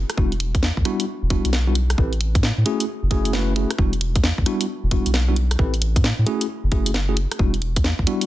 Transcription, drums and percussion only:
0.10 cross-stick medium
0.10 closed hi-hat medium
0.18 kick loud
0.32 closed hi-hat soft
0.40 closed hi-hat loud
0.55 kick loud
0.55 closed hi-hat medium
0.63 snare loud
0.77 kick medium
0.85 cross-stick soft
0.85 closed hi-hat medium
1.00 closed hi-hat medium
1.30 kick loud
1.30 closed hi-hat loud
1.45 closed hi-hat medium
1.53 snare loud
1.75 closed hi-hat medium
1.90 cross-stick medium
1.90 closed hi-hat medium
1.98 kick loud
2.13 closed hi-hat soft
2.21 closed hi-hat medium
2.35 kick loud
2.35 closed hi-hat medium
2.43 snare loud
2.66 closed hi-hat medium
2.80 closed hi-hat medium
3.11 kick loud
3.11 closed hi-hat loud
3.25 closed hi-hat medium
3.33 snare loud
3.56 closed hi-hat medium
3.71 cross-stick medium
3.71 closed hi-hat medium
3.79 kick loud
3.93 closed hi-hat soft
4.01 closed hi-hat loud
4.16 kick loud
4.16 closed hi-hat medium
4.24 snare loud
4.38 kick medium
4.46 cross-stick soft
4.46 closed hi-hat medium
4.61 closed hi-hat medium
4.91 kick loud
4.91 closed hi-hat loud
5.06 closed hi-hat medium
5.14 snare loud
5.36 closed hi-hat medium
5.51 cross-stick medium
5.51 closed hi-hat medium
5.59 kick loud
5.74 closed hi-hat soft
5.82 closed hi-hat loud
5.96 kick loud
5.96 closed hi-hat medium
6.04 snare loud
6.27 closed hi-hat medium
6.41 closed hi-hat medium
6.72 kick loud
6.72 closed hi-hat loud
6.86 closed hi-hat medium
6.94 snare loud
7.17 closed hi-hat medium
7.32 cross-stick medium
7.32 closed hi-hat medium
7.39 kick loud
7.54 closed hi-hat soft
7.62 closed hi-hat loud
7.76 kick loud
7.76 closed hi-hat medium
7.84 snare loud
7.99 kick medium
8.07 closed hi-hat medium
8.21 closed hi-hat medium

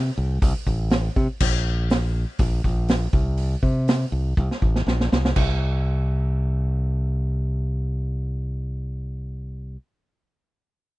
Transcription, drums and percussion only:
0.42 kick loud
0.42 open hi-hat medium
0.67 kick medium
0.90 snare loud
0.90 open hi-hat medium
1.16 kick medium
1.40 kick loud
1.40 crash loud
1.90 snare loud
1.90 open hi-hat medium
2.39 kick loud
2.39 open hi-hat medium
2.64 kick medium
2.88 snare loud
2.88 open hi-hat medium
3.13 kick loud
3.37 open hi-hat medium
3.63 kick medium
3.88 snare loud
3.88 open hi-hat medium
4.37 kick loud
4.51 snare medium
4.62 kick medium
4.76 snare medium
4.88 snare medium
5.01 snare medium
5.13 snare loud
5.25 snare loud
5.36 kick loud
5.36 crash medium

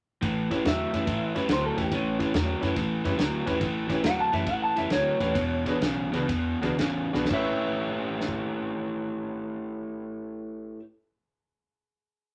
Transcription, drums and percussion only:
0.23 kick loud
0.23 snare soft
0.23 ride medium
0.51 kick medium
0.51 snare soft
0.51 ride medium
0.65 snare medium
0.65 ride medium
0.94 snare soft
0.94 ride medium
1.07 kick loud
1.07 snare soft
1.07 ride medium
1.36 snare soft
1.36 ride medium
1.49 snare medium
1.49 ride medium
1.78 kick medium
1.78 snare soft
1.78 ride medium
1.92 kick loud
1.92 snare soft
1.92 ride medium
2.20 kick medium
2.20 snare soft
2.20 ride medium
2.34 snare medium
2.34 ride medium
2.63 snare soft
2.63 ride medium
2.76 kick loud
2.76 snare soft
2.76 ride medium
3.05 snare soft
3.05 ride medium
3.19 snare loud
3.19 ride medium
3.47 kick medium
3.47 snare soft
3.47 ride medium
3.61 kick loud
3.61 snare soft
3.61 ride medium
3.90 kick medium
3.90 snare soft
3.90 ride medium
4.04 snare loud
4.04 ride medium
4.33 snare soft
4.33 ride medium
4.47 kick loud
4.47 snare soft
4.47 ride medium
4.77 snare soft
4.77 ride medium
4.90 snare loud
4.90 ride medium
5.20 kick medium
5.20 snare soft
5.20 ride medium
5.35 kick loud
5.35 snare soft
5.35 ride medium
5.66 kick medium
5.66 snare soft
5.66 ride medium
5.82 snare medium
5.82 ride medium
6.14 snare soft
6.14 ride medium
6.29 kick loud
6.29 snare soft
6.29 ride medium
6.63 snare soft
6.63 ride medium
6.79 snare medium
6.79 ride medium
7.14 snare medium
7.25 snare medium
7.31 kick medium
7.31 crash medium
8.21 snare medium
8.28 kick medium

